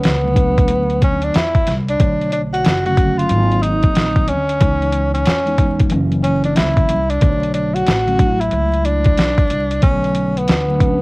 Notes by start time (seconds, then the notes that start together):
Already playing: B3
0.04 C#2, snare, closed hi-hat
0.23 D3 F#3 A3 B3
0.34 F#3 A3 B3 D4, kick, closed hi-hat
0.58 kick, closed hi-hat
0.68 D2, closed hi-hat
0.90 closed hi-hat
1.02 C#4, kick, closed hi-hat
1.22 D4, closed hi-hat
1.34 E2 E4, snare, closed hi-hat
1.55 kick, closed hi-hat
1.67 C2, snare, closed hi-hat
1.88 D4, closed hi-hat
1.98 B1 D3 F#3 A3 C#5, kick, closed hi-hat
2.21 closed hi-hat
2.32 D4, closed hi-hat
2.53 F#4, closed hi-hat
2.64 F#1, snare, closed hi-hat
2.85 D3 F#3 A3 C#4 F#4, closed hi-hat
2.96 D3 F#3 A3 C#4, kick, closed hi-hat
3.18 F4, closed hi-hat
3.29 G#1 D#3 F#3 A#3 B3, closed hi-hat
3.38 C4
3.52 closed hi-hat
3.62 D#4, closed hi-hat
3.83 kick, closed hi-hat
3.95 A#1, snare, closed hi-hat
4.16 kick, closed hi-hat
4.28 D2 C#4, closed hi-hat
4.49 closed hi-hat
4.60 C#2 E3 G#3 B3 D#4, kick, closed hi-hat
4.82 closed hi-hat
4.92 closed hi-hat
5.14 C#4, closed hi-hat
5.26 E2, snare, closed hi-hat
5.45 E3 G#3 B3 D#4, closed hi-hat
5.58 E3 G#3 B3 D#4, kick, closed hi-hat
5.79 kick, closed hi-hat
5.90 F#1 E3 F#3 A#3 C#4, closed hi-hat
6.12 closed hi-hat
6.24 C#4, closed hi-hat
6.44 D4, closed hi-hat
6.56 C#2 E4, snare, closed hi-hat
6.77 kick, closed hi-hat
6.89 C2, closed hi-hat
7.09 D4, closed hi-hat
7.20 B1 D3 F#3 A3 B3, kick, closed hi-hat
7.29 C#5
7.43 closed hi-hat
7.54 D4, closed hi-hat
7.74 F#4, closed hi-hat
7.87 A1, snare, closed hi-hat
8.06 D3 F#3 A3 C#4, closed hi-hat
8.18 F#3 A3 D4, kick, closed hi-hat
8.27 E4
8.41 E4, closed hi-hat
8.51 C#2, closed hi-hat
8.73 closed hi-hat
8.85 D4, closed hi-hat
9.04 kick, closed hi-hat
9.17 B1, snare, closed hi-hat
9.38 kick, closed hi-hat
9.50 C2, closed hi-hat
9.71 closed hi-hat
9.80 B1 D3 F#3 A3 B3 C#4, kick, closed hi-hat
10.04 closed hi-hat
10.15 closed hi-hat
10.37 B3, closed hi-hat
10.48 D2, snare, closed hi-hat
10.68 D3 F#3 A3 D4
10.80 F#3 A3 C4 D4, kick, closed hi-hat
10.88 C#4